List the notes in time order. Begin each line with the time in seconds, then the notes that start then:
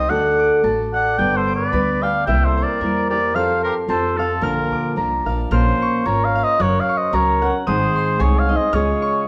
Already playing: C5 D#5 G5 C6 D#6
0.09 D2 D3 A3 D4 F#4 A4 D5 F#5 F#6
0.39 D6
0.63 A1 A3 D4 F#4 A4 A5
0.94 D5 F#5
1.18 G1 G2 D3 G3 B3 D4 B4 D5 G5 G6
1.36 A4 C5
1.48 D6
1.55 B4 D5
1.72 D2 G3 B3 D4 B4 B5
2.02 G3 B3 D4 B4 D5 F5 G5
2.26 C2 C3 G3 A#3 E4 A#4 E5 G5
2.44 A4 C5
2.57 C5
2.63 A#4 D5
2.81 E2 G3 A#3 E4 A#4
3.10 A#3 E4 G4 A#4 D5
3.34 F2 F3 C4 F4 A4 C5 F5 F6
3.64 G4 A#4 C6
3.88 F2 F3 C4 F4 A4 C5 A5
4.17 C4 F4 A4 F5
4.41 A#1 A#2 D3 F3 A#3 D4 F4 A#4 F6
4.71 D2 D6
4.96 C2 F3 A#3 D4 A#4 A#5
5.26 A#1 F3 A#3 D4 A#4 F5
5.51 A#1 A#2 F3 A#3 C#4 F4 A#4 C5 F6
5.82 C#6
6.06 G#1 A#3 C#4 F4 A#4 C#5 A#5
6.25 C#5 F5
6.35 F5
6.44 C5 D#5
6.59 F#1 F#3 C#4 F#4 A#4 C#5 F#6
6.80 C#5 F5
6.89 C#6
6.97 C5 D#5
7.12 C#2 F#3 C#4 F#4 A#4 C#5 A#5
7.16 A#4
7.42 C#4 F#4 A#4 F#5
7.67 G#1 G#2 D#3 G#3 C4 D#4 G#4 C5 D#6
7.96 C6
8.19 C2 G#3 C4 D#4 G#4 C#5 G#5
8.38 C#5 F5
8.49 G#3 C4 D#4 G#4 D#5
8.55 C5 D#5
8.73 C#2 C#3 G#3 C#4 F4 G#4 C#5 F6
9.02 C#6